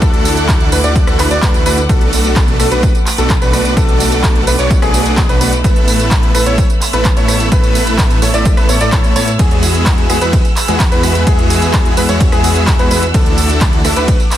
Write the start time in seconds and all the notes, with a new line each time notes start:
Already playing: A4 F#5 D6
0.02 D2 A3 D4 F#4 A4 F#6, kick, closed hi-hat, tambourine
0.14 closed hi-hat
0.25 open hi-hat, tambourine
0.37 closed hi-hat, tambourine
0.49 kick, clap, closed hi-hat, tambourine
0.60 closed hi-hat
0.72 D2 A3 D4 E4 F#4 B4, open hi-hat, tambourine
0.84 D2 A3 D4 E4 F#4 D5, closed hi-hat, tambourine
0.96 kick, closed hi-hat, tambourine
1.07 D2 A3 D4 E4 F#4 A4, cross-stick, closed hi-hat, tambourine
1.19 D2 A3 D4 E4 F#4 B4, clap, open hi-hat, tambourine
1.31 D2 A3 D4 E4 F#4 D5, closed hi-hat, tambourine
1.42 D2 A3 E4 B4, kick, clap, closed hi-hat, tambourine
1.54 closed hi-hat, tambourine
1.66 D2 A3 D4 E4 F#4 B4, open hi-hat, tambourine
1.78 closed hi-hat, tambourine
1.89 B1 A3 B3 D4 F#4 A4 B5 D6, kick, closed hi-hat, tambourine
2.01 closed hi-hat
2.13 open hi-hat, tambourine
2.24 closed hi-hat, tambourine
2.36 kick, clap, closed hi-hat, tambourine
2.48 closed hi-hat
2.60 B1 A3 B3 D4 F#4 A4, cross-stick, open hi-hat, tambourine
2.71 B1 A3 B3 D4 F#4 B4, closed hi-hat, tambourine
2.83 kick, closed hi-hat, tambourine
2.95 closed hi-hat, tambourine
3.06 clap, open hi-hat, tambourine
3.18 B1 A3 B3 D4 F#4 A4, closed hi-hat, tambourine
3.30 kick, clap, closed hi-hat, tambourine
3.42 B1 A3 B3 D4 F#4 B4, closed hi-hat, tambourine
3.53 cross-stick, open hi-hat, tambourine
3.65 closed hi-hat, tambourine
3.77 B1 A3 B3 D4 F#4 A4, kick, closed hi-hat, tambourine
3.89 closed hi-hat
4.00 open hi-hat, tambourine
4.12 closed hi-hat, tambourine
4.24 kick, clap, closed hi-hat, tambourine
4.35 closed hi-hat
4.47 B1 A3 B3 D4 F#4 B4, open hi-hat, tambourine
4.59 B1 A3 B3 D4 F#4 C#5, closed hi-hat, tambourine
4.71 kick, closed hi-hat, tambourine
4.82 B1 A3 B3 D4 F#4 G#4, cross-stick, closed hi-hat, tambourine
4.94 open hi-hat, tambourine
5.06 closed hi-hat, tambourine
5.17 kick, clap, closed hi-hat, tambourine
5.29 B1 A3 B3 D4 F#4 B4, closed hi-hat, tambourine
5.41 B1 A3 B3 D4 F#4 B4, open hi-hat, tambourine
5.53 closed hi-hat, tambourine
5.64 A1 A3 B3 E4 A4 B4 E5 E6, kick, closed hi-hat, tambourine
5.76 closed hi-hat
5.88 open hi-hat, tambourine
5.99 closed hi-hat, tambourine
6.11 kick, clap, closed hi-hat, tambourine
6.23 closed hi-hat
6.35 A1 A3 B3 E4 A4 B4, cross-stick, open hi-hat, tambourine
6.46 A1 A3 B3 E4 A4 C#5, closed hi-hat, tambourine
6.58 kick, closed hi-hat, tambourine
6.70 closed hi-hat, tambourine
6.81 clap, open hi-hat, tambourine
6.93 A1 A3 B3 E4 A4 B4, closed hi-hat, tambourine
7.05 kick, clap, closed hi-hat, tambourine
7.17 A1 A3 B3 E4 A4 C#5, closed hi-hat, tambourine
7.28 cross-stick, open hi-hat, tambourine
7.40 closed hi-hat, tambourine
7.52 A1 A3 B3 E4 A4 B4, kick, closed hi-hat, tambourine
7.64 closed hi-hat, tambourine
7.75 open hi-hat, tambourine
7.87 closed hi-hat, tambourine
7.99 kick, clap, closed hi-hat, tambourine
8.10 closed hi-hat, tambourine
8.22 A1 A3 B3 E4 A4 C#5, open hi-hat, tambourine
8.34 A1 A3 B3 E4 A4 D5, closed hi-hat, tambourine
8.46 kick, closed hi-hat, tambourine
8.57 A1 A3 B3 E4 A4 B4, cross-stick, closed hi-hat, tambourine
8.69 A1 A3 B3 E4 A4 C#5, open hi-hat, tambourine
8.81 A1 A3 B3 E4 A4 D5, closed hi-hat, tambourine
8.92 A1 A3 B3 E4 A4 C#5, kick, clap, closed hi-hat, tambourine
9.04 closed hi-hat, tambourine
9.16 A2 A3 B3 E4 A4 C#5, open hi-hat, tambourine
9.28 closed hi-hat, tambourine
9.39 E2 G#3 B3 E4 F#4 G#4 F#5, kick, closed hi-hat, ride, tambourine
9.51 closed hi-hat
9.63 open hi-hat, tambourine
9.74 closed hi-hat, tambourine
9.86 kick, clap, closed hi-hat, ride, tambourine
9.98 closed hi-hat
10.10 E2 G#3 B3 E4 F#4 G#4, cross-stick, open hi-hat, tambourine
10.21 E2 G#3 B3 E4 F#4 B4, closed hi-hat, tambourine
10.33 kick, closed hi-hat, ride, tambourine
10.45 closed hi-hat, tambourine
10.56 clap, open hi-hat, tambourine
10.68 E2 G#3 B3 E4 F#4 G#4, closed hi-hat, tambourine
10.80 kick, clap, closed hi-hat, ride, tambourine
10.92 E2 G#3 B3 E4 F#4 B4, closed hi-hat, tambourine
11.03 cross-stick, open hi-hat, tambourine
11.15 closed hi-hat, tambourine
11.27 E2 G#3 B3 F#4 G#4, kick, closed hi-hat, ride, tambourine
11.39 closed hi-hat
11.50 open hi-hat, tambourine
11.62 closed hi-hat, tambourine
11.74 kick, clap, closed hi-hat, ride, tambourine
11.85 closed hi-hat
11.97 E2 G#3 B3 E4 F#4 B4, open hi-hat, tambourine
12.09 E2 G#3 B3 E4 F#4 C#5, closed hi-hat, tambourine
12.21 kick, closed hi-hat, ride, tambourine
12.32 E2 G#3 B3 E4 F#4 G#4, cross-stick, closed hi-hat, tambourine
12.44 open hi-hat, tambourine
12.56 closed hi-hat, tambourine
12.67 kick, clap, closed hi-hat, ride, tambourine
12.79 E2 G#3 B3 E4 F#4 B4, closed hi-hat, tambourine
12.91 E2 G#3 B3 E4 F#4 B4, open hi-hat, tambourine
13.03 closed hi-hat, tambourine
13.14 D2 A3 D4 E4 F#4 A4 D6, kick, closed hi-hat, ride, tambourine
13.26 closed hi-hat
13.38 open hi-hat, tambourine
13.49 closed hi-hat, tambourine
13.61 kick, clap, closed hi-hat, ride, tambourine
13.73 closed hi-hat
13.85 D2 A3 D4 E4 F#4 A4, cross-stick, open hi-hat, tambourine
13.96 D2 A3 D4 E4 F#4 B4, closed hi-hat, tambourine
14.08 kick, closed hi-hat, ride, tambourine
14.20 closed hi-hat, tambourine
14.31 clap, open hi-hat, tambourine